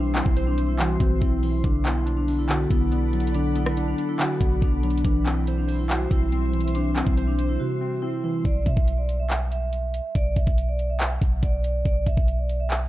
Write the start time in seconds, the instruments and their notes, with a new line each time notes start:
Already playing: 808-style bass B1, synth keys E3 C4 C5, ambient pad G3 C5 E5 C6, vibraphone D4
0.15 synth keys C4, vibraphone E4, clap, closed hi-hat
0.26 808-style bass B1, kick
0.37 synth keys C5, closed hi-hat
0.47 vibraphone D4
0.58 synth keys C5, closed hi-hat
0.69 vibraphone E4
0.79 synth keys E3, vibraphone F#4, clap, closed hi-hat
1.00 808-style bass B1, synth keys C4, kick, closed hi-hat
1.21 808-style bass B1, synth keys C4, vibraphone E4, kick, closed hi-hat
1.43 synth keys E3, vibraphone E4, open hi-hat
1.64 808-style bass B1, synth keys D3, vibraphone D4, ambient pad A4 D5 F#5 B5, kick, closed hi-hat
1.85 synth keys B3, vibraphone E4, clap, closed hi-hat
2.06 synth keys D4, closed hi-hat
2.17 vibraphone D4
2.28 synth keys D4, open hi-hat
2.39 vibraphone E4
2.49 synth keys D3, vibraphone F#4, clap, closed hi-hat
2.70 808-style bass B1, synth keys B3, vibraphone E4, kick, closed hi-hat
2.92 synth keys B3, closed hi-hat
3.13 synth keys F#3, closed hi-hat
3.20 closed hi-hat
3.27 closed hi-hat
3.34 synth keys D3, vibraphone D4, closed hi-hat
3.56 synth keys B3, vibraphone E4, closed hi-hat
3.66 cross-stick
3.77 synth keys D4, closed hi-hat
3.88 vibraphone D4
3.98 synth keys D4, closed hi-hat
4.09 vibraphone E4
4.19 synth keys D3, vibraphone F#4, clap, closed hi-hat
4.41 808-style bass B1, synth keys B3, kick, closed hi-hat
4.61 808-style bass B1, synth keys B3, vibraphone D4, kick, closed hi-hat
4.83 synth keys F#3, vibraphone D4, closed hi-hat
4.90 closed hi-hat
4.98 closed hi-hat
5.04 808-style bass B1, synth keys E3, ambient pad G3 C5 E5 C6, vibraphone D4, kick, closed hi-hat
5.25 synth keys C4, vibraphone E4, clap, closed hi-hat
5.47 synth keys C5, closed hi-hat
5.58 vibraphone D4
5.68 synth keys C5, open hi-hat
5.79 vibraphone E4
5.89 vibraphone F#4, clap, closed hi-hat
6.11 808-style bass B1, synth keys C4, vibraphone E4, kick, closed hi-hat
6.32 synth keys C4, closed hi-hat
6.53 synth keys E3, closed hi-hat
6.61 closed hi-hat
6.68 closed hi-hat
6.75 vibraphone D4, closed hi-hat
6.96 synth keys C4, vibraphone E4, clap, closed hi-hat
7.07 808-style bass B1, kick
7.17 synth keys C5, closed hi-hat
7.28 vibraphone D4
7.38 synth keys C5, closed hi-hat
7.49 vibraphone E4
7.60 synth keys C3, vibraphone F#4
7.81 synth keys C4
8.02 synth keys C4, vibraphone E4
8.24 synth keys E3, vibraphone E4
8.45 808-style bass B1, vibraphone D5, kick, closed hi-hat
8.66 808-style bass B2, vibraphone E5, kick, closed hi-hat
8.77 808-style bass B1, kick
8.88 closed hi-hat
8.98 vibraphone D5
9.09 closed hi-hat
9.19 vibraphone E5
9.30 vibraphone F#5, clap, closed hi-hat
9.51 vibraphone E5, closed hi-hat
9.73 closed hi-hat
9.94 closed hi-hat
10.15 808-style bass B1, vibraphone D5, kick, closed hi-hat
10.36 808-style bass B1, vibraphone E5, kick, closed hi-hat
10.47 808-style bass B1, kick
10.58 closed hi-hat
10.69 vibraphone D5
10.79 closed hi-hat
10.90 vibraphone E5
11.00 vibraphone F#5, clap, closed hi-hat
11.21 808-style bass B1, kick, closed hi-hat
11.43 808-style bass B1, vibraphone D5, kick, closed hi-hat
11.64 vibraphone D5, closed hi-hat
11.85 808-style bass B1, vibraphone D5, kick, closed hi-hat
12.06 808-style bass B1, vibraphone E5, kick, closed hi-hat
12.17 808-style bass B1, kick
12.28 closed hi-hat
12.39 vibraphone D5
12.49 closed hi-hat
12.60 vibraphone E5
12.70 vibraphone F#5, clap, closed hi-hat